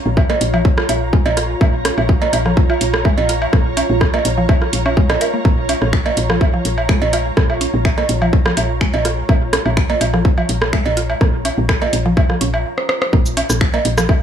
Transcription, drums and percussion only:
0.17 kick loud
0.17 low woodblock soft
0.30 cross-stick soft
0.30 cowbell medium
0.41 closed hi-hat medium
0.54 low woodblock soft
0.65 kick loud
0.78 cross-stick medium
0.89 closed hi-hat medium
0.89 low woodblock soft
1.13 kick loud
1.26 cowbell medium
1.26 low woodblock soft
1.37 cross-stick soft
1.37 closed hi-hat loud
1.61 kick loud
1.61 low woodblock soft
1.85 cross-stick medium
1.85 closed hi-hat loud
1.98 low woodblock soft
2.09 kick loud
2.22 cowbell medium
2.33 closed hi-hat medium
2.33 low woodblock soft
2.46 cross-stick soft
2.57 kick loud
2.70 low woodblock soft
2.81 closed hi-hat medium
2.94 cross-stick medium
3.05 kick loud
3.05 low woodblock soft
3.18 cowbell medium
3.29 closed hi-hat loud
3.42 low woodblock soft
3.53 kick loud
3.53 cross-stick soft
3.77 closed hi-hat medium
3.77 low woodblock soft
4.01 kick loud
4.01 cross-stick medium
4.14 cowbell medium
4.14 low woodblock soft
4.25 closed hi-hat loud
4.49 kick loud
4.49 low woodblock soft
4.62 cross-stick soft
4.73 closed hi-hat medium
4.86 low woodblock soft
4.97 kick loud
5.10 cross-stick medium
5.10 cowbell medium
5.21 closed hi-hat medium
5.21 low woodblock soft
5.45 kick loud
5.69 closed hi-hat medium
5.69 low woodblock soft
5.82 cross-stick soft
5.93 finger snap medium
5.93 kick loud
6.06 cowbell medium
6.06 low woodblock soft
6.17 closed hi-hat medium
6.30 cross-stick medium
6.41 kick loud
6.41 low woodblock soft
6.65 closed hi-hat medium
6.78 low woodblock soft
6.89 finger snap medium
6.89 kick loud
6.89 cross-stick soft
7.02 cowbell medium
7.13 closed hi-hat medium
7.13 low woodblock soft
7.37 kick loud
7.37 cross-stick medium
7.50 low woodblock soft
7.61 closed hi-hat medium
7.85 finger snap medium
7.85 kick loud
7.85 low woodblock soft
7.98 cross-stick soft
7.98 cowbell medium
8.09 closed hi-hat medium
8.22 low woodblock soft
8.33 kick loud
8.46 cross-stick medium
8.57 closed hi-hat medium
8.57 low woodblock soft
8.81 finger snap medium
8.81 kick loud
8.94 cowbell medium
8.94 low woodblock soft
9.05 cross-stick soft
9.05 closed hi-hat medium
9.29 kick loud
9.29 low woodblock soft
9.53 cross-stick medium
9.53 closed hi-hat medium
9.66 low woodblock soft
9.77 finger snap medium
9.77 kick loud
9.90 cowbell medium
10.01 closed hi-hat medium
10.01 low woodblock soft
10.14 cross-stick soft
10.25 kick loud
10.38 low woodblock soft
10.49 closed hi-hat medium
10.62 cross-stick medium
10.73 finger snap medium
10.73 kick loud
10.73 low woodblock soft
10.86 cowbell medium
10.97 closed hi-hat medium
11.10 low woodblock soft
11.21 kick loud
11.21 cross-stick soft
11.45 closed hi-hat medium
11.45 low woodblock soft
11.69 finger snap loud
11.69 kick loud
11.69 cross-stick medium
11.82 cowbell medium
11.82 low woodblock soft
11.93 closed hi-hat medium
12.17 kick loud
12.17 low woodblock soft
12.30 cross-stick soft
12.41 closed hi-hat medium
12.54 low woodblock soft
12.78 cross-stick medium
12.89 cross-stick medium
13.02 cross-stick medium
13.13 kick loud
13.26 shaker soft
13.37 closed hi-hat medium
13.37 low woodblock soft
13.50 cross-stick soft
13.50 shaker medium
13.61 finger snap loud
13.61 kick loud
13.74 cowbell medium
13.74 low woodblock soft
13.85 closed hi-hat medium
13.98 cross-stick medium
13.98 shaker medium
14.09 kick loud
14.09 low woodblock soft

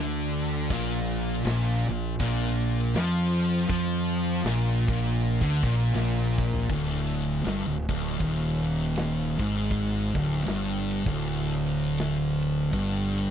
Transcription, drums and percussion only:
0.39 open hi-hat medium
0.70 kick loud
0.70 crash loud
1.15 open hi-hat medium
1.45 snare loud
1.45 open hi-hat medium
1.89 open hi-hat medium
2.20 kick loud
2.20 open hi-hat medium
2.63 open hi-hat medium
2.94 snare loud
2.94 open hi-hat medium
3.38 open hi-hat medium
3.69 kick loud
3.69 open hi-hat medium
4.13 open hi-hat medium
4.44 snare loud
4.44 open hi-hat medium
4.88 kick loud
4.88 open hi-hat medium
5.19 open hi-hat medium
5.41 kick loud
5.63 kick loud
5.63 open hi-hat medium
5.96 snare medium
6.38 kick medium
6.53 floor tom medium
6.69 kick loud
6.69 crash medium
7.14 ride medium
7.45 snare loud
7.45 ride medium
7.89 kick loud
7.89 ride medium
8.20 kick loud
8.20 ride medium
8.64 ride medium
8.96 snare loud
8.96 ride medium
9.39 kick loud
9.39 ride medium
9.71 kick loud
9.71 ride medium
10.15 kick loud
10.15 ride medium
10.33 snare soft
10.46 snare loud
10.46 ride loud
10.91 ride medium
11.06 kick loud
11.22 ride medium
11.67 ride medium
11.98 snare loud
11.98 ride medium
12.42 ride medium
12.73 kick medium
12.73 ride medium
13.17 ride medium

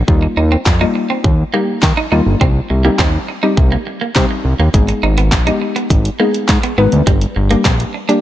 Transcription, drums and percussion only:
0.08 kick loud
0.66 kick loud
0.66 snare medium
0.66 clap loud
1.24 kick loud
1.83 kick loud
1.83 snare medium
1.83 clap loud
2.41 kick loud
2.99 kick loud
2.99 snare medium
2.99 clap loud
3.57 kick loud
4.16 kick loud
4.16 snare medium
4.16 clap loud
4.74 kick loud
4.74 closed hi-hat medium
4.88 closed hi-hat medium
5.18 closed hi-hat medium
5.32 kick loud
5.32 snare medium
5.32 clap loud
5.32 closed hi-hat medium
5.47 closed hi-hat medium
5.76 closed hi-hat medium
5.90 kick loud
5.90 closed hi-hat medium
6.05 closed hi-hat medium
6.34 closed hi-hat medium
6.49 kick loud
6.49 snare medium
6.49 clap loud
6.49 closed hi-hat medium
6.63 closed hi-hat medium
6.92 closed hi-hat medium
7.07 kick loud
7.07 closed hi-hat medium
7.21 closed hi-hat soft
7.51 closed hi-hat medium
7.65 kick loud
7.65 snare medium
7.65 clap loud
7.65 closed hi-hat medium
7.80 closed hi-hat medium
8.09 closed hi-hat medium

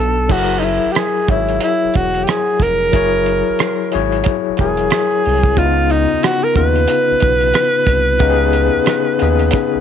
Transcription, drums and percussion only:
0.29 kick loud
0.29 crash medium
0.62 closed hi-hat soft
0.95 cross-stick loud
0.95 closed hi-hat medium
1.28 kick medium
1.28 closed hi-hat medium
1.49 closed hi-hat soft
1.60 closed hi-hat medium
1.94 kick medium
1.94 closed hi-hat medium
2.14 closed hi-hat soft
2.27 cross-stick loud
2.27 closed hi-hat medium
2.60 kick medium
2.60 closed hi-hat medium
2.93 kick loud
2.93 closed hi-hat medium
3.26 closed hi-hat soft
3.59 cross-stick loud
3.59 closed hi-hat medium
3.92 closed hi-hat medium
4.12 closed hi-hat soft
4.24 kick medium
4.24 closed hi-hat medium
4.57 kick medium
4.57 closed hi-hat medium
4.77 closed hi-hat soft
4.90 cross-stick loud
4.90 closed hi-hat medium
5.25 open hi-hat soft
5.43 kick medium
5.57 kick loud
5.57 closed hi-hat medium
5.90 closed hi-hat medium
6.23 cross-stick loud
6.23 closed hi-hat medium
6.56 kick medium
6.56 closed hi-hat medium
6.76 closed hi-hat soft
6.88 closed hi-hat medium
7.20 kick medium
7.20 closed hi-hat medium
7.41 closed hi-hat soft
7.54 cross-stick loud
7.54 closed hi-hat medium
7.87 kick loud
7.87 closed hi-hat medium
8.19 kick loud
8.19 closed hi-hat medium
8.53 closed hi-hat medium
8.86 cross-stick loud
8.86 closed hi-hat medium
9.19 closed hi-hat medium
9.39 closed hi-hat soft
9.51 kick medium
9.51 closed hi-hat medium

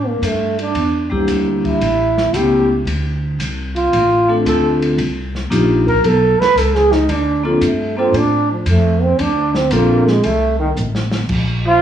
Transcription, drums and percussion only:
0.23 hi-hat pedal soft
0.23 ride medium
0.59 ride soft
0.75 ride medium
1.12 kick soft
1.28 hi-hat pedal medium
1.28 ride medium
1.65 kick soft
1.65 ride soft
1.81 ride medium
2.17 snare soft
2.34 hi-hat pedal medium
2.34 ride medium
2.87 ride medium
3.40 hi-hat pedal medium
3.40 ride medium
3.76 ride soft
3.93 ride medium
4.46 hi-hat pedal medium
4.46 ride medium
4.82 ride soft
4.98 ride medium
5.35 snare soft
5.52 hi-hat pedal medium
5.52 ride medium
5.88 kick medium
5.88 ride soft
6.04 ride medium
6.42 snare medium
6.42 ride soft
6.58 hi-hat pedal medium
6.58 ride medium
6.75 snare soft
6.92 snare soft
7.09 ride medium
7.62 hi-hat pedal medium
7.62 ride medium
8.14 ride medium
8.66 hi-hat pedal medium
8.66 ride medium
9.19 ride medium
9.55 snare medium
9.71 hi-hat pedal medium
9.71 ride medium
10.07 snare soft
10.23 ride medium
10.77 hi-hat pedal medium
10.95 snare medium
11.12 snare medium
11.29 kick medium
11.29 crash medium

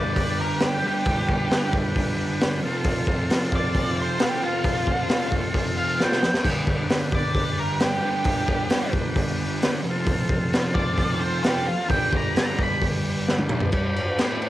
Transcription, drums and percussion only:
0.16 kick medium
0.16 open hi-hat medium
0.60 snare loud
0.60 open hi-hat medium
1.05 kick loud
1.05 open hi-hat medium
1.29 kick medium
1.51 snare loud
1.51 open hi-hat medium
1.73 kick loud
1.96 kick medium
1.96 open hi-hat medium
2.41 snare loud
2.41 open hi-hat medium
2.84 kick loud
2.84 open hi-hat medium
3.07 kick loud
3.30 snare loud
3.30 open hi-hat medium
3.52 kick loud
3.75 kick medium
3.75 open hi-hat medium
4.19 snare loud
4.19 open hi-hat medium
4.64 kick loud
4.64 open hi-hat medium
4.87 kick medium
5.09 snare loud
5.09 open hi-hat medium
5.32 kick loud
5.54 kick medium
5.54 open hi-hat medium
6.00 snare medium
6.12 snare medium
6.23 snare loud
6.34 snare loud
6.45 kick loud
6.45 open hi-hat medium
6.45 crash loud
6.67 kick medium
6.90 snare loud
6.90 open hi-hat medium
7.12 kick loud
7.35 kick medium
7.35 open hi-hat medium
7.80 snare loud
7.80 open hi-hat medium
8.24 kick loud
8.24 open hi-hat medium
8.48 kick loud
8.70 snare loud
8.70 open hi-hat medium
8.93 kick loud
9.16 kick medium
9.16 open hi-hat medium
9.62 snare loud
9.62 open hi-hat medium
10.07 kick loud
10.07 open hi-hat medium
10.29 kick loud
10.53 snare loud
10.53 open hi-hat medium
10.75 kick loud
10.98 kick medium
10.98 open hi-hat medium
11.44 snare loud
11.44 open hi-hat medium
11.90 kick loud
11.90 open hi-hat medium
12.13 kick medium
12.36 snare loud
12.36 open hi-hat medium
12.59 kick loud
12.82 kick medium
12.82 open hi-hat medium
13.29 snare medium
13.39 high tom medium
13.49 mid tom medium
13.60 floor tom loud
13.72 kick loud
13.72 crash medium
13.96 crash medium
14.18 snare loud
14.18 crash medium
14.42 crash medium

